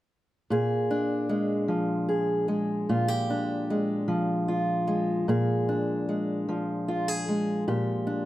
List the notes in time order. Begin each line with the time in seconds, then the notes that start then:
0.50 A#2 G#4
0.91 D4
1.29 G#3
1.68 F3
2.09 G#4
2.48 G#3
2.89 A#2 F4
3.08 G4
3.30 D4
3.70 G#3
4.08 F3
4.48 F4
4.87 G#3
5.28 A#2 G#4
5.69 D4
6.09 G#3
6.49 F3
6.88 F4
7.08 G#4
7.28 G#3
7.68 A#2 G4
8.07 D4